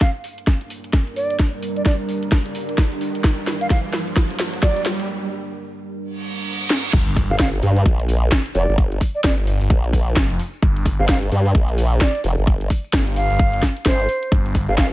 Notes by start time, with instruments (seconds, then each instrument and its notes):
Already playing: ambient pad G3 D4 A#4, riser
0.01 flute F5, kick, snare, closed hi-hat, tambourine
0.15 tambourine
0.24 open hi-hat, tambourine
0.38 closed hi-hat, tambourine
0.47 kick, snare, closed hi-hat, tambourine
0.61 closed hi-hat, tambourine
0.70 open hi-hat, tambourine
0.84 closed hi-hat, tambourine
0.93 kick, snare, closed hi-hat, tambourine
1.07 closed hi-hat, tambourine
1.16 flute D5, open hi-hat, tambourine
1.30 closed hi-hat, tambourine
1.39 kick, snare, closed hi-hat, tambourine
1.53 tambourine
1.63 open hi-hat, tambourine
1.76 flute D5, closed hi-hat, tambourine
1.86 flute D5, kick, snare, closed hi-hat, tambourine
2.00 tambourine
2.09 open hi-hat, tambourine
2.23 closed hi-hat, tambourine
2.32 kick, snare, closed hi-hat, tambourine
2.46 closed hi-hat, tambourine
2.55 open hi-hat, tambourine
2.69 closed hi-hat, tambourine
2.78 kick, snare, closed hi-hat, tambourine
2.92 closed hi-hat, tambourine
3.01 open hi-hat, tambourine
3.15 closed hi-hat, tambourine
3.24 kick, snare, closed hi-hat, tambourine
3.38 tambourine
3.47 snare, open hi-hat, tambourine
3.61 flute F5, closed hi-hat, tambourine
3.70 flute F5, kick, snare, closed hi-hat, tambourine
3.84 tambourine
3.93 snare, open hi-hat, tambourine
4.07 closed hi-hat, tambourine
4.16 kick, snare, closed hi-hat, tambourine
4.30 closed hi-hat, tambourine
4.39 snare, open hi-hat, tambourine
4.53 closed hi-hat, tambourine
4.63 flute D5, kick, snare, closed hi-hat, tambourine
4.76 closed hi-hat, tambourine
4.86 snare, open hi-hat, tambourine
5.00 closed hi-hat, tambourine
6.01 reverse cymbal
6.70 snare
6.93 detuned saw bass G1, kick, closed hi-hat, crash, tambourine, impact
7.07 closed hi-hat, tambourine
7.16 kick, open hi-hat, tambourine
7.30 wobble bass G1, flute F5, tambourine
7.39 flute F5, kick, snare, closed hi-hat, tambourine
7.53 closed hi-hat, tambourine
7.63 wobble bass G2, open hi-hat, tambourine
7.76 closed hi-hat, tambourine
7.86 wobble bass A#1, kick, closed hi-hat, tambourine
7.99 closed hi-hat
8.09 open hi-hat, tambourine
8.23 tambourine
8.32 kick, snare, closed hi-hat, tambourine
8.46 closed hi-hat, tambourine
8.55 wobble bass F1, flute D5, open hi-hat, tambourine
8.69 wobble bass G1, tambourine
8.78 kick, closed hi-hat, tambourine
8.92 closed hi-hat, tambourine
9.01 kick, open hi-hat, tambourine
9.15 flute D5, tambourine
9.24 detuned saw bass G1, flute D5, kick, snare, closed hi-hat, tambourine
9.38 closed hi-hat, tambourine
9.47 open hi-hat, tambourine
9.61 detuned saw bass G1, closed hi-hat, tambourine
9.70 wobble bass A#1, kick, closed hi-hat, tambourine
9.84 closed hi-hat
9.93 kick, open hi-hat, tambourine
10.07 tambourine
10.16 detuned saw bass G1, kick, snare, closed hi-hat, tambourine
10.30 detuned saw bass F1, closed hi-hat, tambourine
10.39 open hi-hat, tambourine
10.53 tambourine
10.63 detuned saw bass G1, kick, closed hi-hat, tambourine
10.76 closed hi-hat, tambourine
10.86 kick, open hi-hat, tambourine
10.99 wobble bass G1, flute F5, tambourine
11.09 flute F5, kick, snare, closed hi-hat, tambourine
11.23 closed hi-hat, tambourine
11.32 wobble bass G2, open hi-hat, tambourine
11.46 closed hi-hat, tambourine
11.55 wobble bass A#1, kick, closed hi-hat, tambourine
11.69 closed hi-hat
11.78 open hi-hat, tambourine
11.92 tambourine
12.01 flute D5, kick, snare, closed hi-hat, tambourine
12.15 closed hi-hat, tambourine
12.24 wobble bass F1, open hi-hat, tambourine
12.38 wobble bass G1, tambourine
12.47 kick, closed hi-hat, tambourine
12.61 closed hi-hat, tambourine
12.70 kick, open hi-hat, tambourine
12.84 tambourine
12.93 detuned saw bass G1, kick, snare, closed hi-hat, tambourine
13.07 closed hi-hat, tambourine
13.16 flute F5, open hi-hat, tambourine
13.30 detuned saw bass G1, closed hi-hat, tambourine
13.39 detuned saw bass G1, kick, closed hi-hat, tambourine
13.53 closed hi-hat, tambourine
13.63 kick, snare, open hi-hat, tambourine
13.77 closed hi-hat, tambourine
13.86 wobble bass G1, flute C5, kick, snare, closed hi-hat, tambourine
14.00 closed hi-hat, tambourine
14.09 open hi-hat, tambourine
14.23 closed hi-hat, tambourine
14.32 detuned saw bass G1, kick, closed hi-hat, tambourine
14.46 closed hi-hat, tambourine
14.55 kick, open hi-hat, tambourine
14.69 wobble bass G1, flute F5, tambourine
14.78 flute F5, kick, snare, closed hi-hat, tambourine